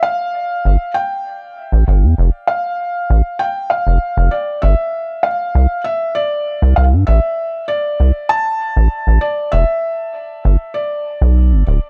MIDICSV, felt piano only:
0, 0, Header, 1, 2, 480
1, 0, Start_track
1, 0, Tempo, 612245
1, 1712, Time_signature, 4, 2, 24, 8
1, 9328, End_track
2, 0, Start_track
2, 0, Title_t, "Felt piano"
2, 0, Program_c, 0, 0
2, 21, Note_on_c, 0, 77, 104
2, 715, Note_off_c, 0, 77, 0
2, 740, Note_on_c, 0, 79, 99
2, 1435, Note_off_c, 0, 79, 0
2, 1940, Note_on_c, 0, 77, 93
2, 2660, Note_on_c, 0, 79, 100
2, 2688, Note_off_c, 0, 77, 0
2, 2900, Note_on_c, 0, 77, 92
2, 2914, Note_off_c, 0, 79, 0
2, 3380, Note_on_c, 0, 74, 86
2, 3401, Note_off_c, 0, 77, 0
2, 3621, Note_on_c, 0, 76, 96
2, 3634, Note_off_c, 0, 74, 0
2, 4101, Note_on_c, 0, 77, 95
2, 4121, Note_off_c, 0, 76, 0
2, 4555, Note_off_c, 0, 77, 0
2, 4582, Note_on_c, 0, 76, 102
2, 4821, Note_on_c, 0, 74, 106
2, 4834, Note_off_c, 0, 76, 0
2, 5275, Note_off_c, 0, 74, 0
2, 5301, Note_on_c, 0, 77, 95
2, 5356, Note_off_c, 0, 77, 0
2, 5540, Note_on_c, 0, 76, 105
2, 5995, Note_off_c, 0, 76, 0
2, 6021, Note_on_c, 0, 74, 96
2, 6501, Note_on_c, 0, 81, 118
2, 6521, Note_off_c, 0, 74, 0
2, 7221, Note_on_c, 0, 74, 94
2, 7249, Note_off_c, 0, 81, 0
2, 7461, Note_on_c, 0, 76, 104
2, 7474, Note_off_c, 0, 74, 0
2, 8421, Note_on_c, 0, 74, 86
2, 8456, Note_off_c, 0, 76, 0
2, 9115, Note_off_c, 0, 74, 0
2, 9328, End_track
0, 0, End_of_file